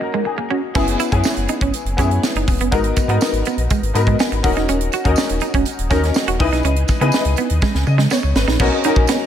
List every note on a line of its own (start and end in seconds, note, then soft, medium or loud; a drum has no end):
0.00 0.78 A#3 medium
0.00 0.75 C#4 medium
0.00 0.78 D#4 medium
0.00 0.50 F#4 medium
0.00 0.26 A#4 medium
0.00 muted clean electric guitar stroke soft
0.14 0.24 G#3 medium
0.25 0.50 G#4 medium
0.25 muted clean electric guitar stroke soft
0.38 0.48 A#3 medium
0.50 0.60 C#4 medium
0.50 0.97 F#4 medium
0.75 0.96 F#1 loud
0.75 1.09 B3 medium
0.75 1.09 C#4 medium
0.75 0.85 C#4 medium
0.75 1.09 E4 medium
0.75 1.10 G#4 medium
0.75 kick loud
0.75 crash medium
0.75 tambourine soft
0.87 closed hi-hat medium
0.99 1.10 E4 medium
0.99 closed hi-hat medium
0.99 tambourine soft
1.11 1.23 F#2 loud
1.11 1.91 B3 medium
1.11 1.91 C#4 medium
1.11 1.91 E4 medium
1.11 1.91 G#4 medium
1.11 muted clean electric guitar stroke soft
1.11 kick medium
1.11 closed hi-hat soft
1.24 muted clean electric guitar stroke soft
1.24 snare loud
1.24 tambourine medium
1.36 1.47 F#1 medium
1.36 closed hi-hat soft
1.48 1.59 D#4 medium
1.48 closed hi-hat medium
1.48 tambourine soft
1.61 1.72 G#1 medium
1.61 1.72 C#4 medium
1.61 kick medium
1.61 closed hi-hat soft
1.73 closed hi-hat medium
1.73 tambourine soft
1.85 1.96 F#1 medium
1.85 closed hi-hat soft
1.97 2.19 F#2 medium
1.97 2.65 B3 medium
1.97 2.66 C#4 medium
1.97 2.08 C#4 medium
1.97 2.66 E4 medium
1.97 2.66 G#4 medium
1.97 kick medium
1.97 closed hi-hat medium
1.97 tambourine soft
2.11 closed hi-hat soft
2.23 snare loud
2.23 tambourine medium
2.35 2.45 F#1 medium
2.35 2.46 D#4 medium
2.35 closed hi-hat soft
2.48 2.58 E1 medium
2.48 muted clean electric guitar stroke soft
2.48 kick medium
2.48 open hi-hat medium
2.48 tambourine soft
2.59 2.70 F#1 medium
2.59 2.70 B3 medium
2.59 closed hi-hat medium
2.71 2.93 G#1 loud
2.71 2.83 G#3 medium
2.71 3.06 B3 medium
2.71 3.06 D#4 medium
2.71 3.06 F#4 medium
2.71 3.06 A#4 medium
2.71 kick loud
2.71 closed hi-hat medium
2.71 tambourine soft
2.84 closed hi-hat medium
2.96 muted clean electric guitar stroke soft
2.96 kick medium
2.96 closed hi-hat medium
2.96 tambourine soft
3.08 3.18 G#2 loud
3.08 3.87 B3 medium
3.08 3.19 B3 medium
3.08 3.88 D#4 medium
3.08 3.88 F#4 medium
3.08 3.88 A#4 medium
3.08 closed hi-hat soft
3.21 snare loud
3.21 tambourine medium
3.32 3.43 G#1 medium
3.32 closed hi-hat medium
3.45 3.56 B3 medium
3.45 closed hi-hat medium
3.45 tambourine soft
3.57 3.68 A#1 medium
3.57 closed hi-hat soft
3.70 3.80 G#3 medium
3.70 kick medium
3.70 closed hi-hat medium
3.70 tambourine soft
3.82 3.93 G#1 loud
3.82 closed hi-hat soft
3.94 4.15 G#2 loud
3.94 4.43 B3 medium
3.94 4.42 D#4 medium
3.94 4.42 F#4 medium
3.94 4.43 A#4 medium
3.94 4.17 B5 medium
3.94 muted clean electric guitar stroke soft
3.94 closed hi-hat medium
3.94 tambourine soft
4.07 4.17 G#3 medium
4.07 kick medium
4.07 closed hi-hat soft
4.19 4.29 B3 medium
4.19 4.42 G#5 medium
4.19 snare loud
4.19 tambourine medium
4.32 4.42 G#1 medium
4.32 muted clean electric guitar stroke soft
4.32 closed hi-hat soft
4.43 4.54 D#1 loud
4.43 5.00 C#4 medium
4.43 5.00 D#4 medium
4.43 5.00 F#4 medium
4.43 5.00 A#4 medium
4.43 4.67 F#5 medium
4.43 kick loud
4.43 open hi-hat medium
4.43 tambourine soft
4.56 4.67 E1 medium
4.56 4.66 D#4 medium
4.56 snare soft
4.56 closed hi-hat soft
4.68 4.89 D#1 loud
4.68 4.78 C#4 medium
4.68 closed hi-hat medium
4.68 tambourine soft
4.81 closed hi-hat medium
4.92 5.03 F#4 medium
4.92 closed hi-hat medium
4.92 tambourine soft
5.04 5.15 D#2 loud
5.04 5.83 C#4 medium
5.04 5.84 D#4 medium
5.04 5.84 F#4 medium
5.04 5.84 A#4 medium
5.04 muted clean electric guitar stroke soft
5.04 kick medium
5.04 closed hi-hat soft
5.16 muted clean electric guitar stroke soft
5.16 snare loud
5.16 tambourine medium
5.29 5.40 D#1 loud
5.29 closed hi-hat medium
5.40 5.51 D#4 medium
5.40 closed hi-hat medium
5.40 tambourine soft
5.54 5.64 E1 loud
5.54 5.64 C#4 medium
5.54 kick medium
5.54 closed hi-hat soft
5.65 closed hi-hat medium
5.65 tambourine soft
5.79 5.89 D#1 loud
5.79 closed hi-hat soft
5.90 6.11 D#2 loud
5.90 6.39 C#4 medium
5.90 6.00 C#4 medium
5.90 6.38 D#4 medium
5.90 6.40 F#4 medium
5.90 6.40 A#4 loud
5.90 kick medium
5.90 snare soft
5.90 closed hi-hat medium
5.90 tambourine soft
6.03 snare soft
6.03 closed hi-hat soft
6.14 snare loud
6.14 tambourine medium
6.27 6.38 D#1 loud
6.27 6.37 F#4 medium
6.27 closed hi-hat soft
6.39 6.50 C#2 loud
6.39 6.96 D#4 medium
6.39 6.96 E4 medium
6.39 6.96 G#4 medium
6.39 6.96 B4 loud
6.39 muted clean electric guitar stroke soft
6.39 kick loud
6.39 open hi-hat medium
6.52 6.62 B1 medium
6.52 6.62 D#4 medium
6.52 snare soft
6.52 closed hi-hat medium
6.63 6.84 C#2 loud
6.63 6.74 C#4 medium
6.63 closed hi-hat medium
6.63 tambourine soft
6.76 closed hi-hat medium
6.88 muted clean electric guitar stroke soft
6.88 kick medium
6.88 snare soft
6.88 closed hi-hat medium
6.88 tambourine soft
7.00 7.11 C#3 medium
7.00 7.11 B3 medium
7.00 7.79 D#4 medium
7.00 7.79 E4 medium
7.00 7.80 G#4 medium
7.00 7.80 B4 medium
7.00 closed hi-hat medium
7.12 snare loud
7.12 tambourine medium
7.25 7.35 C#2 medium
7.25 closed hi-hat medium
7.36 7.47 B3 medium
7.36 closed hi-hat medium
7.36 tambourine soft
7.50 7.60 D#2 medium
7.50 closed hi-hat soft
7.61 7.72 G#3 medium
7.61 kick medium
7.61 snare medium
7.61 tambourine soft
7.74 7.85 C#2 medium
7.74 snare medium
7.87 8.07 C#3 loud
7.87 8.10 D#5 medium
7.87 muted clean electric guitar stroke soft
7.87 tambourine soft
7.98 8.08 G#3 medium
7.98 snare medium
8.10 8.21 B3 medium
8.10 8.34 C#5 medium
8.10 snare medium
8.10 tambourine medium
8.23 8.33 C#2 medium
8.23 muted clean electric guitar stroke soft
8.35 8.45 G#1 loud
8.35 8.82 B4 medium
8.35 snare medium
8.35 tambourine soft
8.47 8.57 A#1 medium
8.47 8.57 D#4 medium
8.47 snare medium
8.59 8.70 B1 loud
8.59 8.70 B3 medium
8.59 8.83 C#4 medium
8.59 8.83 D#4 medium
8.59 8.83 F#4 medium
8.59 8.83 A#4 loud
8.59 kick loud
8.59 crash medium
8.59 tambourine soft
8.72 muted clean electric guitar stroke soft
8.84 9.26 C#4 medium
8.84 8.94 D#4 medium
8.84 9.26 D#4 medium
8.84 9.26 F#4 medium
8.84 9.26 A#4 loud
8.84 closed hi-hat medium
8.84 tambourine soft
8.96 9.06 A#1 loud
8.96 kick medium
9.07 9.18 B3 medium
9.07 snare loud
9.07 closed hi-hat loud
9.07 tambourine medium